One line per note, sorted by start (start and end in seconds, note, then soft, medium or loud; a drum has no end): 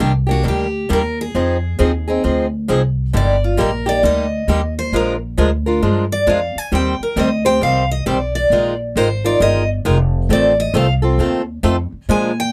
0.00 0.44 C2 medium
0.00 0.11 D#3 medium
0.00 0.11 G3 medium
0.00 0.12 A#3 medium
0.00 0.12 D4 medium
0.00 0.12 G4 medium
0.27 0.43 A#3 soft
0.27 0.43 D4 soft
0.27 0.44 G4 medium
0.31 0.46 F#4 medium
0.43 0.88 D2 medium
0.43 0.66 D#3 medium
0.43 0.66 G3 medium
0.43 0.66 A#3 medium
0.43 0.66 D4 medium
0.43 0.66 G4 medium
0.48 0.88 G4 medium
0.89 1.33 D#2 medium
0.89 1.01 D#3 medium
0.89 1.01 G3 medium
0.89 1.01 A#3 medium
0.89 1.01 D4 medium
0.89 1.01 G4 medium
0.93 1.19 A#4 medium
1.21 2.22 G#4 medium
1.35 1.78 F2 medium
1.35 1.56 F3 medium
1.35 1.56 C4 medium
1.35 1.57 D#4 medium
1.35 1.57 G#4 medium
1.79 2.23 D#2 medium
1.79 1.90 F3 medium
1.79 1.90 C4 medium
1.79 1.91 D#4 medium
1.79 1.91 G#4 medium
2.08 2.23 C4 soft
2.08 2.23 D#4 medium
2.08 2.23 G#4 medium
2.24 2.68 D2 medium
2.24 2.45 F3 medium
2.24 2.46 C4 medium
2.24 2.46 D#4 medium
2.24 2.46 G#4 medium
2.68 3.13 C2 medium
2.68 2.80 F3 medium
2.68 2.80 C4 medium
2.68 2.81 D#4 medium
2.68 2.81 G#4 medium
3.13 3.58 G1 medium
3.13 3.35 D3 medium
3.13 3.35 G3 medium
3.13 3.35 A#3 medium
3.13 3.35 D#4 medium
3.13 3.36 G4 medium
3.13 3.43 D5 medium
3.44 3.59 F4 soft
3.57 4.02 A#1 medium
3.57 3.69 D3 medium
3.57 3.70 G3 medium
3.57 3.70 A#3 medium
3.57 3.70 D#4 medium
3.57 3.70 G4 medium
3.57 3.87 A#4 medium
3.86 4.02 A#3 soft
3.86 4.03 D#4 soft
3.86 4.02 G4 medium
3.86 4.04 D5 medium
4.03 4.47 D2 medium
4.03 4.25 D3 medium
4.03 4.25 G3 medium
4.03 4.25 A#3 medium
4.03 4.25 D#4 medium
4.03 4.25 G4 medium
4.03 4.73 D#5 loud
4.48 4.91 D#2 medium
4.48 4.59 D3 medium
4.48 4.60 G3 medium
4.48 4.60 A#3 medium
4.48 4.60 D#4 medium
4.48 4.60 G4 medium
4.79 4.94 C5 medium
4.92 5.36 A#1 medium
4.92 5.14 F3 medium
4.92 5.14 G#3 medium
4.92 5.15 D4 medium
4.92 5.15 F4 medium
4.92 5.15 A#4 medium
4.92 5.12 A#4 medium
5.38 5.81 D2 medium
5.38 5.49 F3 medium
5.38 5.49 G#3 medium
5.38 5.49 D4 medium
5.38 5.49 F4 medium
5.38 5.50 A#4 loud
5.66 5.81 D4 soft
5.66 5.81 F4 medium
5.66 5.82 A#4 medium
5.82 6.26 G2 medium
5.82 6.04 F3 medium
5.82 6.04 G#3 medium
5.82 6.04 D4 medium
5.82 6.04 F4 medium
5.82 6.04 A#4 medium
6.12 6.28 D5 medium
6.27 6.53 F2 medium
6.27 6.38 F3 medium
6.27 6.39 G#3 medium
6.27 6.39 D4 medium
6.27 6.39 F4 medium
6.27 6.39 A#4 medium
6.27 6.58 F5 medium
6.56 6.73 G#5 medium
6.56 muted upright bass stroke soft
6.72 6.98 D#2 medium
6.72 6.93 D#3 medium
6.72 6.94 G3 medium
6.72 6.94 C4 medium
6.72 6.94 G4 medium
6.72 6.94 C5 medium
6.72 7.01 G5 medium
7.00 7.18 A#4 medium
7.00 muted upright bass stroke soft
7.16 7.60 D2 medium
7.16 7.28 D#3 medium
7.16 7.28 G3 medium
7.16 7.28 C4 medium
7.16 7.29 G4 medium
7.16 7.29 C5 medium
7.16 7.45 D#5 medium
7.45 7.61 C4 soft
7.45 7.61 G4 soft
7.45 7.61 C5 medium
7.45 7.61 G5 loud
7.61 8.05 C2 medium
7.61 7.83 D#3 medium
7.61 7.83 G3 medium
7.61 7.83 C4 medium
7.61 7.83 G4 medium
7.61 7.83 C5 medium
7.61 7.90 F5 medium
7.91 8.06 D#5 medium
8.06 8.50 B1 medium
8.06 8.17 D#3 medium
8.06 8.17 G3 medium
8.06 8.18 C4 medium
8.06 8.18 G4 medium
8.06 8.18 C5 medium
8.06 8.34 D5 medium
8.35 8.76 D5 medium
8.50 8.94 A#1 medium
8.50 8.73 D#3 medium
8.50 8.73 G#3 medium
8.50 8.73 D#4 medium
8.50 8.73 F4 medium
8.50 8.73 A#4 medium
8.96 9.39 G#1 medium
8.96 9.08 D#3 medium
8.96 9.07 G#3 medium
8.96 9.08 D#4 medium
8.96 9.08 F4 medium
8.96 9.08 A#4 medium
8.96 9.24 C5 medium
9.24 9.40 D#4 medium
9.24 9.40 F4 medium
9.24 9.40 A#4 medium
9.24 9.41 D5 medium
9.40 9.84 G1 medium
9.40 9.62 D#3 medium
9.40 9.62 G#3 medium
9.40 9.62 D#4 medium
9.40 9.62 F4 medium
9.40 9.62 A#4 medium
9.40 9.69 D#5 loud
9.85 10.29 F1 medium
9.85 9.96 D#3 medium
9.85 9.97 G#3 medium
9.85 9.97 D#4 medium
9.85 9.97 F4 medium
9.85 9.97 A#4 loud
10.29 10.73 A1 medium
10.29 10.51 D#3 medium
10.29 10.51 A3 medium
10.29 10.51 C4 medium
10.29 10.52 F4 medium
10.29 10.52 A4 medium
10.29 10.59 D5 medium
10.60 10.75 D#5 loud
10.74 11.17 C2 medium
10.74 10.86 D#3 medium
10.74 10.86 A3 medium
10.74 10.86 C4 loud
10.74 10.86 F4 medium
10.74 10.86 A4 medium
10.74 10.93 F5 medium
11.02 11.19 C4 soft
11.02 11.19 F4 medium
11.02 11.19 A4 medium
11.18 11.62 D#2 medium
11.18 11.41 D#3 medium
11.18 11.41 A3 medium
11.18 11.41 C4 medium
11.18 11.41 F4 medium
11.18 11.41 A4 medium
11.63 11.90 F2 medium
11.63 11.75 D#3 medium
11.63 11.75 A3 medium
11.63 11.75 C4 medium
11.63 11.75 F4 medium
11.63 11.75 A4 medium
11.92 muted upright bass stroke soft
12.09 12.52 A#2 medium
12.09 12.30 F3 medium
12.09 12.31 G#3 medium
12.09 12.31 D4 medium
12.09 12.31 F4 medium
12.09 12.31 A#4 medium
12.09 12.37 G#5 medium
12.40 12.52 G5 medium